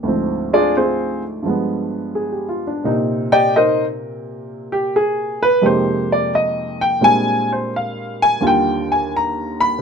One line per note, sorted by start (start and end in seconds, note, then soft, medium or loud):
0.03 1.43 D2 medium
0.03 1.44 G#2 soft
0.03 1.43 F3 soft
0.08 0.76 C4 medium
0.53 0.74 D4 medium
0.53 0.75 F4 medium
0.53 0.75 G#4 medium
0.53 0.75 D5 medium
0.77 1.22 C4 medium
0.77 1.22 F4 medium
0.77 1.22 G#4 medium
0.77 1.22 C5 medium
1.42 2.83 G2 medium
1.42 2.84 F3 soft
1.42 2.85 G#3 medium
1.48 2.85 B3 medium
2.15 2.48 G#4 soft
2.32 2.62 G4 soft
2.49 2.70 F4 medium
2.67 2.91 D4 medium
2.84 5.63 A#2 medium
2.84 5.61 C3 medium
2.84 5.63 C4 soft
2.84 3.55 D#4 medium
3.32 3.54 G4 medium
3.32 3.54 D5 medium
3.32 3.54 D#5 medium
3.32 3.53 G5 loud
3.56 3.84 D#4 medium
3.56 3.84 A#4 medium
3.56 3.84 C5 medium
3.56 3.84 D#5 medium
4.72 4.93 G4 medium
4.96 5.40 G#4 medium
5.43 5.63 B4 loud
5.62 7.02 F2 medium
5.62 7.02 C3 soft
5.62 7.00 G#3 medium
5.62 7.02 A#3 medium
5.62 7.02 D#4 soft
5.62 7.02 G4 medium
5.66 6.10 C5 medium
6.12 6.33 D5 medium
6.35 6.80 D#5 medium
6.81 7.02 G5 medium
7.01 8.41 A#2 medium
7.01 8.41 G3 medium
7.01 8.41 G#3 soft
7.01 8.41 C4 soft
7.01 8.42 D4 soft
7.01 7.49 G#5 loud
7.52 7.73 C5 medium
7.76 8.20 F5 medium
8.22 8.43 G#5 loud
8.41 9.81 D#2 medium
8.41 9.81 D3 medium
8.41 9.79 G3 soft
8.41 9.82 F4 medium
8.47 8.90 G5 loud
8.92 9.12 G#5 medium
9.16 9.60 A#5 medium
9.60 9.81 B5 loud